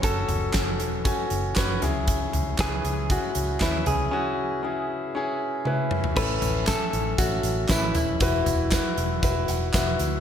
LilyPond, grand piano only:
<<
  \new Staff \with { instrumentName = "Grand piano" } { \time 4/4 \key cis \minor \tempo 4 = 117 <cis' fis' a'>4 <cis' fis' a'>4 <cis' fis' gis''>4 <cis' fis' b'>8 <cis' e' gis'>8~ | <cis' e' gis'>4 <cis' e' b'>4 <cis' e' gis'>4 <cis' e' b'>4 | <cis' e' fis'>4 <cis' e' gis'>4 <cis' e' gis'>4 <cis' e' b'>4 | <cis' e' a'>4 <cis' e' a'>4 <cis' e' a'>4 <cis' e' b'>4 |
<e' fis' b'>4 <e' fis' b'>4 <e' fis' b'>4 <e' fis' b'>4 | }
  \new Staff \with { instrumentName = "Grand piano" } { \clef bass \time 4/4 \key cis \minor r2. r8 cis8~ | cis4 r2 r8 cis8~ | cis4 r2. | a,4. r2 r8 |
e4. r4 fis''8 e''8 e''8 | }
>>